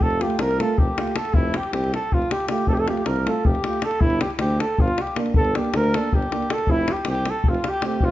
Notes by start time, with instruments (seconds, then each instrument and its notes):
0.00 tuba F1, clarinet A4, flugelhorn A4, davul low
0.10 davul high
0.20 euphonium A3, french horn F4, clarinet G4, flugelhorn G4, davul high
0.30 davul high
0.39 tuba C2, clarinet A#4, flugelhorn A#4, davul high
0.51 davul high
0.58 euphonium A3, french horn F4, clarinet A4, flugelhorn A4, davul high
0.78 tuba F1, clarinet G4, flugelhorn G4, davul low
0.98 euphonium A3, french horn F4, davul high
1.07 davul high
1.16 flugelhorn A4, clarinet A4, davul high
1.25 davul high
1.34 tuba F1, clarinet E4, flugelhorn E4, davul low
1.54 clarinet G4, flugelhorn G4, davul high
1.63 davul high
1.73 tuba C2, flugelhorn G4, clarinet G4, davul high
1.84 davul high
1.94 clarinet A4, flugelhorn A4, davul high
2.11 tuba F1, clarinet F4, flugelhorn F4, davul low
2.22 davul high
2.31 flugelhorn G4, clarinet G4, davul high
2.40 davul high
2.48 euphonium A3, french horn F4, flugelhorn G4, clarinet G4, davul high
2.58 davul high
2.67 tuba F1, clarinet A4, flugelhorn A4, davul low
2.73 clarinet G4, flugelhorn G4
2.77 clarinet A4, flugelhorn A4, davul high
2.87 euphonium A3, french horn F4, flugelhorn G4, clarinet G4, davul high
2.97 davul high
3.06 tuba C2, flugelhorn A#4, clarinet A#4, davul high
3.16 davul high
3.25 euphonium A3, french horn F4, flugelhorn A4, clarinet A4, davul high
3.44 tuba F1, flugelhorn G4, clarinet G4, davul low
3.55 davul high
3.64 euphonium A3, french horn F4, davul high
3.73 davul high
3.82 flugelhorn A4, davul high
3.86 clarinet A4
3.91 davul high
4.01 tuba G1, flugelhorn E4, clarinet E4, davul low
4.10 davul high
4.21 flugelhorn G4, clarinet G4, davul high
4.30 davul high
4.39 tuba D2, flugelhorn G4, davul high
4.43 clarinet G4
4.50 davul high
4.60 flugelhorn A4, clarinet A4, davul high
4.78 tuba G1, flugelhorn F4, clarinet F4, davul low
4.88 davul high
4.98 flugelhorn G4, clarinet G4, davul high
5.07 davul high
5.16 euphonium A#3, french horn D4, davul high
5.26 davul high
5.34 tuba G1, clarinet A4, flugelhorn A4, davul low
5.45 davul high
5.54 euphonium A#3, french horn D4, flugelhorn G4, davul high
5.58 clarinet G4
5.64 davul high
5.74 tuba D2, clarinet A#4, flugelhorn A#4, davul high
5.84 davul high
5.93 euphonium A#3, french horn D4, flugelhorn A4, davul high
5.98 clarinet A4
6.12 tuba G1, flugelhorn G4, clarinet G4, davul low
6.22 davul high
6.31 euphonium A#3, french horn D4, davul high
6.42 davul high
6.50 clarinet A4, flugelhorn A4, davul high
6.58 davul high
6.67 tuba F1, clarinet E4, davul low
6.71 flugelhorn E4
6.88 clarinet G4, davul high
6.92 flugelhorn G4
6.96 davul high
7.05 tuba C2, davul high
7.10 clarinet G4, flugelhorn G4
7.15 davul high
7.25 davul high
7.30 clarinet A4, flugelhorn A4
7.44 tuba F1, davul low
7.49 flugelhorn F4, clarinet F4
7.54 davul high
7.64 davul high
7.68 clarinet G4, flugelhorn G4
7.74 davul high
7.82 euphonium A3, french horn C4, clarinet G4, davul high
7.86 flugelhorn G4
7.92 davul high
8.00 tuba F1, clarinet F4, davul low
8.05 flugelhorn F4